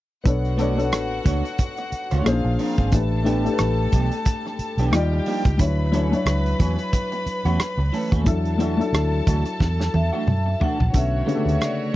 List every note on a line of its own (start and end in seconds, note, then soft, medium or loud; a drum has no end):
0.24 0.92 B1 medium
0.24 0.53 B3 medium
0.24 0.53 D4 medium
0.24 2.22 F#4 medium
0.24 0.54 A4 medium
0.24 0.54 C#5 medium
0.24 2.22 F#5 medium
0.24 kick loud
0.24 closed hi-hat medium
0.45 closed hi-hat soft
0.57 0.78 A3 medium
0.57 0.74 B3 medium
0.57 0.74 D4 medium
0.57 0.79 D4 medium
0.57 0.79 F#4 medium
0.57 0.75 A4 medium
0.57 0.75 C#5 medium
0.57 0.79 D5 medium
0.57 closed hi-hat medium
0.76 1.84 B3 medium
0.76 1.85 D4 medium
0.76 1.85 A4 medium
0.76 1.85 C#5 medium
0.76 closed hi-hat soft
0.92 1.19 A1 medium
0.92 muted clean electric guitar stroke soft
0.92 cross-stick loud
0.92 closed hi-hat medium
1.25 1.41 C#2 medium
1.25 1.41 A3 medium
1.25 1.41 D4 soft
1.25 1.41 F#4 medium
1.25 1.42 C#5 medium
1.25 kick medium
1.25 closed hi-hat medium
1.45 muted clean electric guitar stroke soft
1.45 closed hi-hat soft
1.58 muted clean electric guitar stroke soft
1.58 kick medium
1.58 closed hi-hat medium
1.77 muted clean electric guitar stroke soft
1.77 closed hi-hat soft
1.92 muted fingered electric bass stroke soft
1.92 closed hi-hat medium
2.11 2.23 C#2 medium
2.11 2.25 A3 medium
2.11 2.25 D4 medium
2.11 2.26 F#4 medium
2.11 2.26 C#5 medium
2.11 closed hi-hat soft
2.24 2.41 A#1 medium
2.24 2.81 A#3 medium
2.24 2.33 C#4 medium
2.24 2.92 F4 medium
2.24 2.82 G#4 medium
2.24 2.83 C5 medium
2.24 2.92 F5 medium
2.24 muted clean electric guitar stroke soft
2.24 cross-stick medium
2.24 closed hi-hat medium
2.32 2.85 D4 medium
2.44 2.56 A#1 medium
2.44 muted clean electric guitar stroke soft
2.59 2.74 F3 medium
2.59 2.75 C4 medium
2.59 2.75 D4 medium
2.59 2.75 A#4 medium
2.59 open hi-hat medium
2.78 2.90 G#1 medium
2.78 2.90 F3 soft
2.78 2.90 C4 soft
2.78 2.90 D4 medium
2.78 2.89 G#4 medium
2.78 kick medium
2.78 closed hi-hat soft
2.92 3.46 A1 medium
2.92 3.20 A3 medium
2.92 3.20 D4 medium
2.92 3.21 G4 medium
2.92 4.89 A4 medium
2.92 3.22 B4 medium
2.92 4.89 A5 medium
2.92 kick loud
2.92 closed hi-hat medium
3.23 3.45 E3 medium
3.23 3.40 A3 medium
3.23 3.46 B3 medium
3.23 3.41 D4 medium
3.23 3.46 D4 medium
3.23 3.42 G4 medium
3.23 3.42 B4 medium
3.23 closed hi-hat medium
3.27 3.46 G4 medium
3.44 4.52 A3 medium
3.44 4.52 D4 medium
3.44 4.53 G4 medium
3.44 3.51 A4 medium
3.44 closed hi-hat soft
3.54 4.57 B4 medium
3.58 3.86 A1 medium
3.58 muted clean electric guitar stroke soft
3.58 cross-stick medium
3.58 closed hi-hat medium
3.92 4.08 B1 medium
3.92 4.09 E3 medium
3.92 4.09 B3 soft
3.92 4.09 D4 soft
3.92 4.10 G4 medium
3.92 kick medium
3.92 closed hi-hat medium
4.12 muted clean electric guitar stroke soft
4.12 closed hi-hat soft
4.25 muted clean electric guitar stroke soft
4.25 kick medium
4.25 closed hi-hat medium
4.46 muted clean electric guitar stroke soft
4.46 cross-stick soft
4.59 muted fingered electric bass stroke soft
4.59 closed hi-hat medium
4.77 4.89 B1 medium
4.77 4.94 E3 medium
4.77 4.94 B3 medium
4.77 4.94 D4 medium
4.77 4.94 G4 medium
4.77 closed hi-hat medium
4.91 5.19 D#2 medium
4.91 5.48 G3 medium
4.91 5.49 D#4 medium
4.91 5.49 F4 medium
4.91 5.59 G4 medium
4.91 5.50 D5 medium
4.91 5.59 G5 medium
4.91 cross-stick loud
4.91 closed hi-hat medium
5.13 muted clean electric guitar stroke soft
5.26 5.46 F3 medium
5.26 5.46 A#3 medium
5.26 5.45 D4 medium
5.26 5.45 G4 medium
5.26 open hi-hat medium
5.45 5.57 C#2 medium
5.45 muted clean electric guitar stroke soft
5.45 kick medium
5.45 cross-stick soft
5.45 closed hi-hat soft
5.57 6.13 D2 medium
5.57 5.87 F#3 medium
5.57 5.87 D4 medium
5.57 5.88 E4 medium
5.57 8.22 B4 medium
5.57 5.88 C#5 medium
5.57 8.22 B5 medium
5.57 kick loud
5.57 closed hi-hat medium
5.92 6.12 E3 medium
5.92 6.08 F#3 medium
5.92 6.13 A3 medium
5.92 6.13 C#4 medium
5.92 6.09 D4 medium
5.92 6.09 E4 medium
5.92 6.13 A4 medium
5.92 6.10 C#5 medium
5.92 closed hi-hat medium
6.12 7.19 F#3 medium
6.12 7.19 D4 medium
6.12 7.20 E4 medium
6.12 7.20 C#5 medium
6.12 closed hi-hat soft
6.25 6.53 C#2 medium
6.25 muted clean electric guitar stroke soft
6.25 cross-stick loud
6.25 closed hi-hat medium
6.46 closed hi-hat soft
6.59 6.75 E2 medium
6.59 6.75 E3 medium
6.59 6.75 A3 soft
6.59 6.76 C#4 medium
6.59 6.76 F#4 soft
6.59 kick medium
6.59 closed hi-hat medium
6.79 muted clean electric guitar stroke soft
6.79 closed hi-hat soft
6.93 muted clean electric guitar stroke soft
6.93 kick medium
6.93 closed hi-hat medium
7.12 muted clean electric guitar stroke soft
7.12 closed hi-hat soft
7.26 muted fingered electric bass stroke soft
7.26 closed hi-hat medium
7.45 7.57 E2 medium
7.45 7.59 E3 medium
7.45 7.59 A3 medium
7.45 7.60 C#4 medium
7.45 7.60 F#4 medium
7.45 closed hi-hat soft
7.59 muted fingered electric bass stroke soft
7.59 muted clean electric guitar stroke soft
7.59 cross-stick loud
7.59 closed hi-hat medium
7.78 7.90 C#2 medium
7.78 muted clean electric guitar stroke soft
7.93 8.08 E3 medium
7.93 8.09 A3 medium
7.93 8.09 C#4 medium
7.93 8.09 A4 medium
7.93 open hi-hat medium
8.12 8.26 D#2 medium
8.12 8.24 E3 soft
8.12 8.24 A3 soft
8.12 8.24 C#4 soft
8.12 8.24 F#4 soft
8.12 kick medium
8.12 closed hi-hat soft
8.24 8.80 E2 medium
8.24 8.53 F#3 medium
8.24 8.54 D4 medium
8.24 8.55 E4 medium
8.24 10.90 A4 medium
8.24 8.55 A4 medium
8.24 10.90 A5 medium
8.24 kick loud
8.24 closed hi-hat medium
8.45 closed hi-hat soft
8.58 8.79 E3 medium
8.58 8.75 F#3 medium
8.58 8.80 A3 medium
8.58 8.76 D4 medium
8.58 8.80 D4 medium
8.58 8.76 E4 medium
8.58 8.80 F#4 medium
8.58 8.76 A4 medium
8.58 closed hi-hat medium
8.77 9.86 F#3 medium
8.77 9.86 D4 medium
8.77 9.87 E4 medium
8.77 9.87 A4 medium
8.77 closed hi-hat soft
8.93 9.20 D2 medium
8.93 muted clean electric guitar stroke soft
8.93 cross-stick loud
8.93 closed hi-hat medium
9.27 9.42 D2 medium
9.27 9.42 E3 medium
9.27 9.43 A3 soft
9.27 9.43 D4 medium
9.27 9.43 F#4 medium
9.27 kick medium
9.27 closed hi-hat medium
9.45 muted clean electric guitar stroke soft
9.45 closed hi-hat soft
9.60 9.87 E2 medium
9.60 muted clean electric guitar stroke soft
9.60 kick medium
9.60 snare soft
9.80 muted clean electric guitar stroke soft
9.80 snare soft
9.94 10.09 E2 medium
9.94 10.63 E5 medium
9.94 high tom medium
10.13 10.28 E3 soft
10.13 10.28 A3 medium
10.13 10.28 D4 medium
10.13 10.27 F#4 medium
10.27 10.54 F#2 medium
10.27 mid tom medium
10.46 muted clean electric guitar stroke soft
10.60 10.80 E3 medium
10.60 10.79 A3 medium
10.60 10.79 D4 medium
10.60 10.78 F#4 medium
10.60 10.96 F#5 medium
10.60 floor tom medium
10.79 10.91 A#1 medium
10.79 muted clean electric guitar stroke soft
10.79 floor tom medium
10.92 11.21 B1 medium
10.92 11.21 D3 medium
10.92 11.96 A3 medium
10.92 11.21 B3 soft
10.92 11.22 C#4 medium
10.92 11.96 F#4 medium
10.92 11.22 A4 medium
10.92 11.96 C#5 medium
10.92 kick medium
10.92 closed hi-hat medium
10.97 11.57 E5 medium
11.25 11.96 C#3 medium
11.25 11.96 D3 medium
11.25 11.49 A3 medium
11.25 11.96 B3 medium
11.25 11.49 D4 medium
11.25 11.49 F#4 medium
11.25 11.35 G4 medium
11.25 11.50 D5 medium
11.25 closed hi-hat medium
11.35 11.96 A4 medium
11.46 11.57 D2 medium
11.46 closed hi-hat soft
11.58 11.62 E5 medium
11.58 muted clean electric guitar stroke soft
11.58 cross-stick medium
11.58 closed hi-hat medium
11.64 11.96 D5 medium